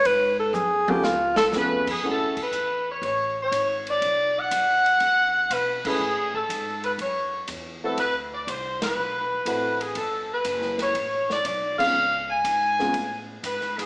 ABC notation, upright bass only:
X:1
M:4/4
L:1/8
Q:"Swing" 1/4=121
K:F#m
V:1 name="Upright bass" clef=bass
G,,2 F,,2 C,,2 ^E,,2 | F,, z E,,2 A,,,2 G,,,2 | B,,,2 F,,2 E,,2 B,,2 | A,,2 G,,2 F,,2 E,,2 |
D,,2 =C,,2 B,,,2 A,,,2 | =G,,,2 F,,,2 A,,,2 B,,,2 | C,,2 G,,2 A,,2 G,,2 |]